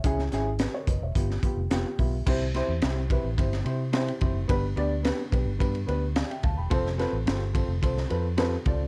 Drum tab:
CC |----------------|x---------------|----------------|----------------|
RD |----------------|--x-x-x-xxx-xxx-|x-x-x-x-xxx-xxx-|x-x-x-x-x-x-x-x-|
HH |x-x-x-x-x-x-x-o-|----------------|----------------|----------------|
SD |-oo-o----o--o---|--o-o----o--o---|----o-------o---|-oo-o----o--o---|
BD |o-----o-o-o---o-|o-----o-o-----o-|o-----o-o-----o-|o-----o-o-----o-|